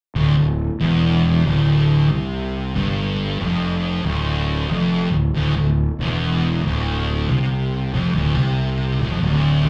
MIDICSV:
0, 0, Header, 1, 3, 480
1, 0, Start_track
1, 0, Key_signature, -1, "minor"
1, 0, Tempo, 647948
1, 120, Time_signature, 4, 2, 24, 8
1, 7181, End_track
2, 0, Start_track
2, 0, Title_t, "Distorted electric guitar"
2, 0, Program_c, 0, 30
2, 116, Note_on_c, 0, 38, 98
2, 263, Note_off_c, 0, 38, 0
2, 273, Note_on_c, 0, 38, 67
2, 480, Note_off_c, 0, 38, 0
2, 596, Note_on_c, 0, 40, 102
2, 1073, Note_off_c, 0, 40, 0
2, 1081, Note_on_c, 0, 38, 97
2, 1556, Note_off_c, 0, 38, 0
2, 1560, Note_on_c, 0, 48, 100
2, 2036, Note_off_c, 0, 48, 0
2, 2040, Note_on_c, 0, 43, 106
2, 2517, Note_off_c, 0, 43, 0
2, 2527, Note_on_c, 0, 41, 102
2, 3000, Note_off_c, 0, 41, 0
2, 3003, Note_on_c, 0, 38, 93
2, 3479, Note_off_c, 0, 38, 0
2, 3487, Note_on_c, 0, 41, 105
2, 3782, Note_off_c, 0, 41, 0
2, 3785, Note_on_c, 0, 38, 70
2, 3926, Note_off_c, 0, 38, 0
2, 3958, Note_on_c, 0, 38, 103
2, 4106, Note_off_c, 0, 38, 0
2, 4116, Note_on_c, 0, 38, 69
2, 4323, Note_off_c, 0, 38, 0
2, 4450, Note_on_c, 0, 40, 102
2, 4912, Note_off_c, 0, 40, 0
2, 4915, Note_on_c, 0, 38, 97
2, 5395, Note_off_c, 0, 38, 0
2, 5401, Note_on_c, 0, 48, 100
2, 5876, Note_off_c, 0, 48, 0
2, 5878, Note_on_c, 0, 41, 101
2, 6027, Note_off_c, 0, 41, 0
2, 6036, Note_on_c, 0, 38, 94
2, 6184, Note_off_c, 0, 38, 0
2, 6184, Note_on_c, 0, 48, 101
2, 6659, Note_off_c, 0, 48, 0
2, 6668, Note_on_c, 0, 38, 95
2, 6750, Note_off_c, 0, 38, 0
2, 6754, Note_on_c, 0, 41, 88
2, 6834, Note_off_c, 0, 41, 0
2, 6837, Note_on_c, 0, 38, 104
2, 7139, Note_off_c, 0, 38, 0
2, 7147, Note_on_c, 0, 50, 97
2, 7181, Note_off_c, 0, 50, 0
2, 7181, End_track
3, 0, Start_track
3, 0, Title_t, "Fingered electric bass"
3, 0, Program_c, 1, 33
3, 114, Note_on_c, 1, 26, 95
3, 261, Note_off_c, 1, 26, 0
3, 280, Note_on_c, 1, 26, 78
3, 501, Note_off_c, 1, 26, 0
3, 601, Note_on_c, 1, 28, 83
3, 1052, Note_off_c, 1, 28, 0
3, 1080, Note_on_c, 1, 26, 102
3, 1531, Note_off_c, 1, 26, 0
3, 1560, Note_on_c, 1, 36, 98
3, 2012, Note_off_c, 1, 36, 0
3, 2041, Note_on_c, 1, 31, 90
3, 2492, Note_off_c, 1, 31, 0
3, 2524, Note_on_c, 1, 29, 90
3, 2974, Note_off_c, 1, 29, 0
3, 2995, Note_on_c, 1, 26, 99
3, 3450, Note_off_c, 1, 26, 0
3, 3480, Note_on_c, 1, 29, 90
3, 3769, Note_off_c, 1, 29, 0
3, 3789, Note_on_c, 1, 26, 76
3, 3950, Note_off_c, 1, 26, 0
3, 3957, Note_on_c, 1, 26, 90
3, 4104, Note_off_c, 1, 26, 0
3, 4119, Note_on_c, 1, 26, 76
3, 4342, Note_off_c, 1, 26, 0
3, 4436, Note_on_c, 1, 28, 94
3, 4891, Note_off_c, 1, 28, 0
3, 4922, Note_on_c, 1, 26, 99
3, 5374, Note_off_c, 1, 26, 0
3, 5405, Note_on_c, 1, 36, 91
3, 5855, Note_off_c, 1, 36, 0
3, 5878, Note_on_c, 1, 29, 85
3, 6025, Note_off_c, 1, 29, 0
3, 6037, Note_on_c, 1, 26, 96
3, 6182, Note_off_c, 1, 26, 0
3, 6191, Note_on_c, 1, 36, 93
3, 6642, Note_off_c, 1, 36, 0
3, 6671, Note_on_c, 1, 26, 96
3, 6746, Note_off_c, 1, 26, 0
3, 6750, Note_on_c, 1, 29, 91
3, 6831, Note_off_c, 1, 29, 0
3, 6835, Note_on_c, 1, 26, 101
3, 7126, Note_off_c, 1, 26, 0
3, 7140, Note_on_c, 1, 38, 92
3, 7181, Note_off_c, 1, 38, 0
3, 7181, End_track
0, 0, End_of_file